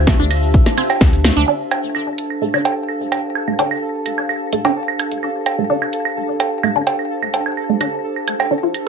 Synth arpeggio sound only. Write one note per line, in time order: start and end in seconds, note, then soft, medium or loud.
0.07 0.09 A3 medium
0.19 0.23 D4 loud
0.78 0.80 C4 medium
1.25 1.28 A3 medium
1.37 1.40 D4 loud
1.48 1.51 D4 loud
2.42 2.44 A3 medium
2.54 2.57 D4 loud
3.48 3.50 A3 medium
3.59 3.62 D4 loud
4.53 4.55 A3 medium
4.65 4.68 D4 medium
5.58 5.60 A3 medium
5.70 5.73 D4 loud
6.64 6.66 A3 medium
6.76 6.79 D4 loud
7.69 7.71 A3 medium
7.81 7.84 D4 loud
8.51 8.53 D4 medium
8.63 8.68 F4 medium